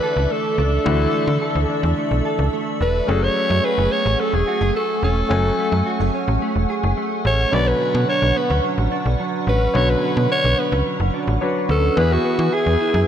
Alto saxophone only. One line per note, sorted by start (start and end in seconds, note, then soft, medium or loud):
0.00 0.33 B4 medium
0.32 0.59 A4 medium
0.59 1.66 A4 medium
2.82 3.11 B4 medium
3.09 3.25 A4 medium
3.23 3.66 C#5 loud
3.65 3.93 B4 loud
3.92 4.22 C#5 medium
4.20 4.36 A4 medium
4.34 4.75 G#4 medium
4.76 5.01 A4 medium
5.04 6.11 A4 medium
7.27 7.55 C#5 loud
7.54 7.69 D5 loud
7.68 8.09 B4 medium
8.09 8.39 C#5 medium
8.37 8.64 B4 medium
9.49 9.78 B4 medium
9.76 9.91 C#5 loud
9.90 10.31 B4 medium
10.31 10.61 C#5 loud
10.59 10.87 B4 medium
11.71 12.00 A4 medium
11.99 12.14 B4 loud
12.13 12.55 F#4 medium
12.54 13.08 G#4 loud